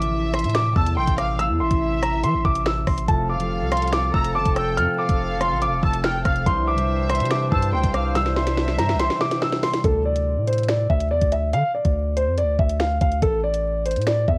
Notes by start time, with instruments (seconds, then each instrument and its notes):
Already playing: 808-style bass A1, violin section E5, grand piano D6
0.01 harp C3 E3 A3 E4 A4, closed hi-hat
0.34 grand piano C6, cross-stick, closed hi-hat
0.39 closed hi-hat
0.44 808-style bass A2, closed hi-hat
0.49 closed hi-hat
0.55 grand piano D6, finger snap, snare, closed hi-hat
0.75 808-style bass E2, harp C3 E3 A3 E4 A4, violin section A5, grand piano E6, kick
0.86 closed hi-hat
0.97 808-style bass A#1, violin section G5, grand piano C6
1.07 808-style bass A1, kick, closed hi-hat
1.18 violin section F5, grand piano D6, cross-stick, closed hi-hat
1.38 harp C3 E3 A3 E4 A4, grand piano E6, closed hi-hat
1.50 808-style bass E2
1.60 808-style bass A1, violin section E5, grand piano C6
1.71 808-style bass A1, kick, closed hi-hat
2.02 harp C3 E3 A3, grand piano A#5, cross-stick, closed hi-hat
2.24 808-style bass E3, grand piano C6, closed hi-hat
2.34 808-style bass A1
2.43 808-style bass A1, harp C3 E3 A3 E4 A4, grand piano D6, kick
2.55 closed hi-hat
2.66 grand piano E6, finger snap, snare
2.87 808-style bass A1, grand piano C6, kick, cross-stick, open hi-hat
2.98 closed hi-hat
3.07 808-style bass F1, harp C3 F3 A3 F4 A4, woodwind section F3 C4 A4, grand piano A5, kick, closed hi-hat
3.29 violin section F5, grand piano D6
3.38 harp C3 F3 A3 F4 G4, closed hi-hat
3.61 808-style bass C2
3.72 grand piano C6, cross-stick, closed hi-hat
3.77 closed hi-hat
3.82 closed hi-hat
3.87 closed hi-hat
3.93 grand piano D6, finger snap, snare, closed hi-hat
4.12 808-style bass F1, harp C3 F3 A3 F4 A4, violin section A#5, grand piano E6, kick
4.24 closed hi-hat
4.35 808-style bass G1, violin section A5, grand piano D6
4.45 808-style bass F1, kick, closed hi-hat
4.56 violin section G5, grand piano E6, cross-stick, closed hi-hat
4.76 808-style bass F2, harp C3 F3 A3 F4 A4, grand piano F6, closed hi-hat
4.98 violin section F5, grand piano D6
5.09 808-style bass F1, kick, closed hi-hat
5.39 harp C3 F3 A3 F4 A4, grand piano C6, cross-stick, closed hi-hat
5.51 808-style bass A1
5.62 grand piano D6, closed hi-hat
5.67 808-style bass F1
5.81 808-style bass F1, harp C3 F3 A3 F4 A4, violin section A5, grand piano E6, kick
5.94 closed hi-hat
6.04 violin section G5, grand piano F6, finger snap, snare
6.25 808-style bass F1, violin section F5, grand piano F6, kick, cross-stick, closed hi-hat
6.36 closed hi-hat
6.45 808-style bass C2, harp C3 E3 G3 D4 G4, woodwind section E3 D4 C5, grand piano C6, kick, closed hi-hat
6.67 violin section E5, grand piano D6
6.76 harp C3 E3 G3 D4 G4, closed hi-hat
7.10 grand piano C6, cross-stick, closed hi-hat
7.15 closed hi-hat
7.20 808-style bass C3, closed hi-hat
7.26 closed hi-hat
7.31 grand piano D6, finger snap, snare, closed hi-hat
7.50 808-style bass G2, harp C3 E3 G3 D4 G4, violin section A5, grand piano E6, kick
7.62 closed hi-hat
7.73 808-style bass D2, violin section G5, grand piano C6
7.83 808-style bass C2, kick, closed hi-hat
7.94 violin section F5, grand piano D6, cross-stick, closed hi-hat
8.14 harp C3 E3 G3 D4 G4, grand piano E6, snare, closed hi-hat
8.26 snare
8.36 violin section E5, grand piano C6, snare
8.47 snare, closed hi-hat
8.57 snare
8.68 snare
8.78 808-style bass G2, harp C3 E3 G3 D4 G4, grand piano A#5, snare, closed hi-hat
8.89 snare
8.95 808-style bass C2
9.00 grand piano C6, snare, closed hi-hat
9.10 snare
9.20 harp C3 E3 G3 D4 G4, grand piano D6, snare
9.31 snare, closed hi-hat
9.42 grand piano E6, snare
9.53 snare
9.63 grand piano C6, snare, open hi-hat
9.74 snare, closed hi-hat
9.84 808-style bass D2, grand piano A4, kick, closed hi-hat
10.05 grand piano D5
10.16 closed hi-hat
10.37 808-style bass A2
10.48 grand piano C5, closed hi-hat
10.53 closed hi-hat
10.58 closed hi-hat
10.63 closed hi-hat
10.69 grand piano D5, finger snap, snare, closed hi-hat
10.90 808-style bass D2, grand piano E5, kick
11.00 closed hi-hat
11.11 808-style bass E2, grand piano D5
11.21 808-style bass D2, kick, closed hi-hat
11.32 grand piano E5, closed hi-hat
11.53 808-style bass D3, grand piano F5, closed hi-hat
11.74 grand piano D5
11.85 808-style bass D2, kick, closed hi-hat
12.17 grand piano C5, closed hi-hat
12.27 808-style bass F2
12.38 grand piano D5, closed hi-hat
12.43 808-style bass D2
12.59 808-style bass D2, grand piano E5, kick
12.69 closed hi-hat
12.80 grand piano F5, finger snap, snare
13.01 808-style bass D2, grand piano F5, kick, closed hi-hat
13.12 closed hi-hat
13.22 808-style bass A1, grand piano A4, kick, closed hi-hat
13.44 grand piano D5
13.54 closed hi-hat
13.86 grand piano C5, closed hi-hat
13.91 closed hi-hat
13.96 808-style bass A2, closed hi-hat
14.01 closed hi-hat
14.07 grand piano D5, finger snap, snare, closed hi-hat
14.28 808-style bass E2, grand piano E5, kick